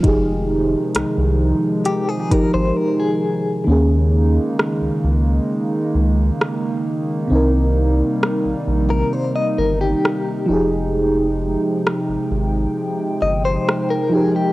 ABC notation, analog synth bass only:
X:1
M:4/4
L:1/16
Q:1/4=66
K:Fm
V:1 name="Analog synth bass" clef=bass
F,,,4 C,, C,,2 z3 A,,, A,,, z4 | E,,4 z D,, D,,2 z2 D,,2 z4 | C,,4 z B,,, B,,,2 z2 G,,,2 z2 F,,,2- | F,,,4 z A,,, A,,,2 z2 G,,,2 z4 |]